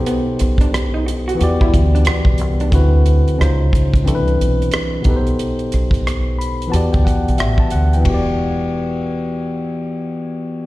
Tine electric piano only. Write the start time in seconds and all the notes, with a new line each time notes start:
Already playing: B2 B3 D#4 G4 A4 C5
1.35 E3 B3
1.39 F#4 G4
1.44 D5
2.70 D3 C4 E4 F#4
2.75 B4
3.37 C#3 C#4 D#4 F4
3.42 C5
4.04 E3 C4 D4 E4
4.08 A4
4.15 B4
5.01 B2 B3 D#4
5.07 G4 A4 B4
5.16 C5
6.39 B5
6.68 E3 B3
6.72 F#4 G4 A5
6.76 D5
6.93 G5
7.05 F#5
7.38 E5
7.60 A5
7.72 F#5
7.93 E3 G5
8.01 B3
8.05 F#4
8.10 G4
8.14 D5